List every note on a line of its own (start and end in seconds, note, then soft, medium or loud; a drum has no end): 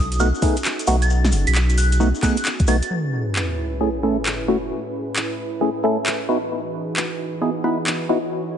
0.00 0.32 B1 medium
0.00 2.87 C#4 medium
0.00 2.87 D#4 medium
0.00 2.87 F#4 medium
0.00 1.06 A4 medium
0.00 0.18 D#6 medium
0.12 closed hi-hat medium
0.12 maracas soft
0.20 0.28 A3 medium
0.20 0.28 B3 medium
0.20 0.28 D#4 medium
0.20 0.28 F#4 medium
0.20 0.37 F#6 medium
0.20 maracas medium
0.35 maracas soft
0.42 0.56 A3 loud
0.42 0.56 B3 medium
0.42 0.56 D#4 medium
0.42 0.56 G#4 loud
0.42 kick loud
0.42 open hi-hat loud
0.42 maracas medium
0.57 closed hi-hat medium
0.57 maracas soft
0.65 clap loud
0.65 maracas soft
0.79 closed hi-hat medium
0.79 maracas soft
0.87 1.34 B1 medium
0.87 0.96 A3 medium
0.87 0.96 B3 medium
0.87 0.96 D#4 medium
0.87 0.96 F#4 loud
0.87 open hi-hat medium
0.87 maracas medium
1.02 1.15 A6 medium
1.02 closed hi-hat medium
1.02 maracas soft
1.10 2.89 G#4 medium
1.10 maracas soft
1.25 snare medium
1.25 maracas soft
1.32 1.46 F#1 loud
1.32 open hi-hat loud
1.32 maracas medium
1.47 2.12 B1 medium
1.47 1.52 B6 medium
1.47 closed hi-hat medium
1.47 maracas soft
1.55 1.64 B6 medium
1.55 clap loud
1.55 maracas soft
1.69 closed hi-hat soft
1.69 maracas soft
1.78 1.95 F#6 medium
1.78 open hi-hat loud
1.78 maracas medium
1.92 closed hi-hat medium
1.92 maracas soft
2.00 2.09 A3 medium
2.00 2.09 B3 medium
2.00 2.09 D#4 medium
2.00 2.09 F#4 medium
2.00 maracas soft
2.15 maracas soft
2.23 2.37 A3 loud
2.23 2.37 B3 medium
2.23 2.37 D#4 medium
2.23 2.37 G#4 loud
2.23 2.40 F#6 medium
2.23 kick medium
2.23 clap medium
2.23 open hi-hat loud
2.23 maracas medium
2.37 closed hi-hat medium
2.37 maracas soft
2.45 clap loud
2.45 maracas medium
2.59 kick loud
2.59 closed hi-hat medium
2.59 maracas soft
2.67 2.81 B1 loud
2.67 2.76 A3 medium
2.67 2.76 B3 medium
2.67 2.76 D#4 medium
2.67 2.76 F#4 loud
2.67 2.91 A6 medium
2.67 open hi-hat medium
2.67 maracas medium
2.82 closed hi-hat medium
2.82 maracas soft
2.90 6.25 A2 medium
2.90 6.25 C#4 medium
2.90 6.25 E4 medium
2.90 6.25 G#4 medium
2.90 8.05 B4 medium
2.90 sub drop medium
3.36 clap loud
3.81 3.89 A3 medium
3.81 3.89 C#4 medium
3.81 3.89 E4 medium
3.81 3.89 G#4 medium
4.03 4.17 A3 medium
4.03 4.17 C#4 medium
4.03 4.17 E4 medium
4.03 4.17 A4 loud
4.26 clap loud
4.48 4.57 A3 medium
4.48 4.57 C#4 medium
4.48 4.57 E4 medium
4.48 4.57 F#4 loud
5.16 clap loud
5.61 5.70 A3 medium
5.61 5.70 C#4 medium
5.61 5.70 E4 medium
5.61 5.70 G#4 medium
5.84 5.97 A3 medium
5.84 5.97 C#4 medium
5.84 5.97 E4 medium
5.84 5.97 A4 loud
6.06 clap loud
6.29 8.58 E3 medium
6.29 6.37 B3 medium
6.29 8.58 D#4 medium
6.29 6.37 D#4 medium
6.29 6.37 E4 medium
6.29 8.58 F#4 medium
6.29 6.37 F#4 loud
6.29 8.58 G#4 medium
6.96 clap loud
7.42 7.50 B3 medium
7.42 7.50 D#4 medium
7.42 7.50 E4 medium
7.42 7.50 G#4 medium
7.64 7.78 B3 medium
7.64 7.78 D#4 medium
7.64 7.78 E4 medium
7.64 7.78 B4 loud
7.87 clap loud
8.09 8.18 B3 medium
8.09 8.18 D#4 medium
8.09 8.18 E4 medium
8.09 8.18 F#4 loud
8.09 8.58 C#5 medium